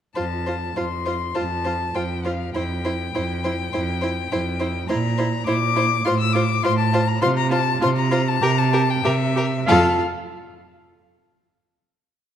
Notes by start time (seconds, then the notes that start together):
0.15 F2 F4 C5 A5
0.46 F4 C5
0.76 F2 F4 C5 C6
1.06 F4 C5
1.35 F2 F4 C5 A5
1.65 F4 C5
1.95 F2 F4 C5 G5
2.25 F4 C5 F5
2.54 F2 E4 C5 G5
2.85 E4 C5
3.15 F2 E4 C5
3.44 E4 C5
3.72 F2 E4 C5
4.01 E4 C5
4.31 F2 E4 C5
4.60 E4 C5
4.89 A#2 E4 C5 A#5
5.18 E4 C5
5.46 A#2 E4 C5 D6
5.76 E4 C5
6.05 A2 F4 C5 C6
6.19 E6
6.33 F4 C5 D6
6.63 A2 F4 C5 C6
6.78 A5
6.93 F4 C5
7.08 A#5
7.21 C3 F4 C5 C6
7.37 A#5
7.50 F4 C5 A5
7.81 C3 F4 C5 C6
7.96 A#5
8.11 F4 C5
8.28 A5
8.42 C3 G4 A#4 A#5
8.58 A5
8.73 G4 A#4
8.90 G5
9.04 C3 G4 A#4 E5
9.35 G4 A#4
9.66 F2 F4 A4 F5